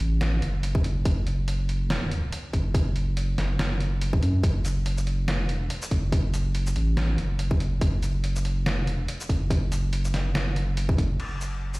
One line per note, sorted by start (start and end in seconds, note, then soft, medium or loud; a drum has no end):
0.00 0.41 A1 loud
0.21 snare loud
0.21 closed hi-hat medium
0.42 1.04 F#1 loud
0.42 closed hi-hat medium
0.63 closed hi-hat medium
0.75 kick loud
0.84 closed hi-hat medium
1.05 2.31 F#1 medium
1.05 kick loud
1.05 closed hi-hat medium
1.27 closed hi-hat medium
1.48 closed hi-hat medium
1.69 closed hi-hat medium
1.90 snare loud
1.90 closed hi-hat medium
2.11 closed hi-hat medium
2.32 closed hi-hat medium
2.53 3.36 F#1 medium
2.53 kick medium
2.53 closed hi-hat medium
2.75 kick loud
2.75 closed hi-hat medium
2.96 closed hi-hat soft
3.17 closed hi-hat medium
3.38 4.21 F#1 medium
3.38 snare medium
3.38 closed hi-hat medium
3.59 snare loud
3.59 closed hi-hat medium
3.80 closed hi-hat soft
4.01 closed hi-hat medium
4.13 kick loud
4.23 4.42 F#2 medium
4.23 closed hi-hat medium
4.43 5.32 F#1 loud
4.43 kick loud
4.43 closed hi-hat medium
4.65 closed hi-hat soft
4.65 shaker medium
4.86 closed hi-hat medium
4.98 shaker medium
5.07 closed hi-hat soft
5.28 5.57 F1 loud
5.28 snare loud
5.28 closed hi-hat medium
5.49 closed hi-hat soft
5.57 5.69 E1 loud
5.70 closed hi-hat medium
5.82 shaker medium
5.91 6.74 F#1 medium
5.91 kick medium
5.91 closed hi-hat soft
6.12 kick loud
6.12 closed hi-hat medium
6.34 closed hi-hat soft
6.34 shaker medium
6.55 closed hi-hat medium
6.66 shaker medium
6.76 7.17 A1 loud
6.76 closed hi-hat soft
6.97 snare loud
6.97 closed hi-hat medium
7.18 7.80 F#1 medium
7.18 closed hi-hat soft
7.39 closed hi-hat medium
7.51 kick loud
7.60 closed hi-hat soft
7.81 8.69 F#1 medium
7.81 kick loud
7.81 closed hi-hat medium
8.03 closed hi-hat medium
8.03 shaker medium
8.24 closed hi-hat medium
8.36 shaker medium
8.45 closed hi-hat medium
8.66 8.94 F1 medium
8.66 snare loud
8.66 closed hi-hat medium
8.87 closed hi-hat soft
8.94 9.07 E1 medium
9.08 closed hi-hat medium
9.20 shaker medium
9.29 10.12 F#1 medium
9.29 kick medium
9.29 closed hi-hat medium
9.50 kick loud
9.50 closed hi-hat medium
9.72 closed hi-hat medium
9.72 shaker medium
9.93 closed hi-hat medium
10.05 shaker medium
10.14 10.97 F#1 loud
10.14 snare medium
10.14 closed hi-hat medium
10.35 snare loud
10.35 closed hi-hat medium
10.56 closed hi-hat medium
10.77 closed hi-hat medium
10.89 kick loud
10.98 11.18 F#1 medium
10.98 kick medium
10.98 closed hi-hat medium
11.19 11.80 F#1 medium
11.19 crash medium
11.41 shaker soft
11.74 shaker medium